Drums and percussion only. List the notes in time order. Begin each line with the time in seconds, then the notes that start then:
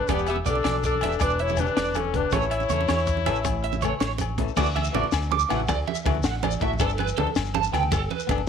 0.08 kick, closed hi-hat, muted conga, high conga, low agogo, shekere
0.18 low conga, shekere
0.27 closed hi-hat, low agogo, shekere
0.36 high conga
0.46 closed hi-hat, low conga, shekere
0.55 muted conga
0.64 snare, closed hi-hat, high conga, low conga, low agogo
0.83 kick, closed hi-hat, shekere
0.94 high conga
1.01 snare, closed hi-hat, muted conga, low agogo
1.12 shekere
1.20 kick, closed hi-hat, high conga, low agogo, shekere
1.29 low conga, shekere
1.39 closed hi-hat
1.48 muted conga, high conga, shekere
1.57 closed hi-hat, low conga, low agogo, shekere
1.66 low conga, shekere
1.77 snare, closed hi-hat, high conga
1.84 shekere
1.94 closed hi-hat, muted conga, low conga, low agogo, shekere
2.05 high conga, low conga
2.14 kick, closed hi-hat, low conga
2.31 kick, closed hi-hat, muted conga, high conga, low conga, low agogo, shekere
2.42 shekere
2.51 closed hi-hat, low agogo
2.60 high conga, shekere
2.69 closed hi-hat, low conga, shekere
2.81 muted conga
2.88 snare, closed hi-hat, high conga, low agogo, shekere
2.97 shekere
3.07 kick, closed hi-hat, shekere
3.17 high conga
3.26 snare, closed hi-hat, muted conga, low conga, low agogo
3.35 shekere
3.44 kick, closed hi-hat, high conga, low agogo, shekere
3.64 closed hi-hat
3.72 muted conga, high conga, shekere
3.81 closed hi-hat, low conga, low agogo, shekere
4.00 snare, closed hi-hat, high conga, shekere
4.18 closed hi-hat, muted conga, low agogo, shekere
4.29 high conga
4.38 kick, closed hi-hat, low conga
4.48 shekere
4.56 kick, crash, muted conga, low conga, low agogo, shekere
4.66 shekere
4.76 ride, high conga, low agogo
4.84 shekere
4.94 ride, muted conga, low conga
5.04 high conga, low conga
5.12 snare, ride, low agogo, shekere
5.22 shekere
5.31 ride, muted conga, high conga
5.39 shekere
5.50 snare, ride, low conga, low agogo
5.60 high conga
5.68 kick, ride, muted conga, low agogo, shekere
5.87 ride, high conga
5.95 shekere
6.06 kick, ride, muted conga, low conga, low agogo
6.15 high conga
6.23 snare, ride, shekere
6.42 ride, muted conga, high conga, low agogo, shekere
6.51 low conga, shekere
6.61 kick, ride, low conga
6.73 high conga
6.79 kick, ride, muted conga, low conga, low agogo, shekere
6.89 shekere
6.98 ride, high conga, low agogo
7.08 shekere
7.17 ride, muted conga, low conga
7.27 high conga, low conga
7.35 snare, ride, low agogo, shekere
7.45 shekere
7.54 ride, muted conga, high conga
7.63 shekere
7.73 snare, ride, low conga, low agogo
7.83 high conga
7.92 kick, ride, muted conga, low agogo, shekere
8.10 ride, high conga
8.20 shekere
8.29 kick, ride, muted conga, low conga, low agogo
8.38 high conga